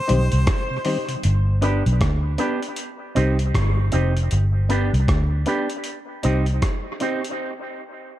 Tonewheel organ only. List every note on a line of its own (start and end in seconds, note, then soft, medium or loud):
0.09 0.21 D#3 medium
0.09 0.21 G3 medium
0.09 0.21 C4 medium
0.32 0.40 C3 medium
0.71 0.79 C3 medium
0.85 0.98 D#3 medium
0.85 0.98 G3 medium
0.85 0.98 C4 medium
1.08 1.17 C3 medium